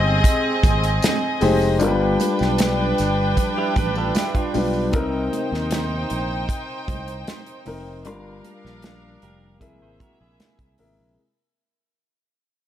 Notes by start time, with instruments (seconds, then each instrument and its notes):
Already playing: fingered electric bass G1, grand piano G#3 D#4 G4 C5, string section C4 G#4 D#5
0.24 kick, closed hi-hat, tambourine
0.64 fingered electric bass G#1, kick, closed hi-hat, tambourine, muted conga
0.83 closed hi-hat, tambourine
1.02 snare, closed hi-hat, tambourine, high conga
1.41 fingered electric bass F1, grand piano G#3 D#4 G4 C5, open hi-hat, tambourine, high conga
1.61 tambourine
1.79 fingered electric bass G1, grand piano G3 D4 F4 A#4, string section D4 B4 G5, closed hi-hat, tambourine, muted conga
1.88 grand piano B4
2.20 closed hi-hat, tambourine, muted conga
2.39 fingered electric bass B1, snare, tambourine
2.58 snare, closed hi-hat, tambourine, high conga
2.98 fingered electric bass G1, snare, closed hi-hat, tambourine
3.37 kick, closed hi-hat, tambourine, low conga
3.58 clean electric guitar E4 G4
3.76 fingered electric bass A1, clean electric guitar G4 B4, kick, closed hi-hat, tambourine, muted conga, low conga
3.95 clean electric guitar F4 A4, tambourine
4.15 clean electric guitar E4 G4, snare, closed hi-hat, tambourine, high conga
4.35 clean electric guitar D4 F4, kick, closed hi-hat
4.54 fingered electric bass B1, grand piano G3 D4 F4 B4, open hi-hat, tambourine, high conga
4.73 tambourine
4.92 fingered electric bass C2, grand piano C3 C4 D#4 A#4, string section D#4 C5 G5, kick, closed hi-hat, muted conga
5.33 closed hi-hat, muted conga
5.52 fingered electric bass D#2, snare
5.71 snare, closed hi-hat, high conga
6.10 fingered electric bass A#1, closed hi-hat, muted conga
6.49 kick, closed hi-hat
6.88 fingered electric bass C2, kick, closed hi-hat, muted conga
7.08 closed hi-hat
7.28 snare, closed hi-hat, high conga
7.46 closed hi-hat
7.65 fingered electric bass F1, grand piano C3 C4 D#4 A#4, open hi-hat, high conga
8.04 fingered electric bass G1, grand piano G3 D4 F4 A#4, string section D4 A#4 F5, closed hi-hat, muted conga
8.45 closed hi-hat, muted conga
8.65 fingered electric bass A#1, snare
8.82 snare, closed hi-hat, high conga
9.22 fingered electric bass F1, clean electric guitar G4 A#4, closed hi-hat, muted conga
9.60 fingered electric bass C2, grand piano C3 G#3 E4 A#4 E5, string section A#3 G#4 E5, clean electric guitar E4 G#4, kick, closed hi-hat, low conga
9.81 fingered electric bass G#1, clean electric guitar G#4 C5
10.00 clean electric guitar F#4 A#4, kick, closed hi-hat, muted conga, low conga
10.21 fingered electric bass A#1, clean electric guitar E4 G#4
10.40 snare, closed hi-hat, high conga
10.59 fingered electric bass C2, kick, closed hi-hat
10.78 fingered electric bass G#1, grand piano C3 G#3 E4 A#4 E5, open hi-hat, high conga
10.99 fingered electric bass A#1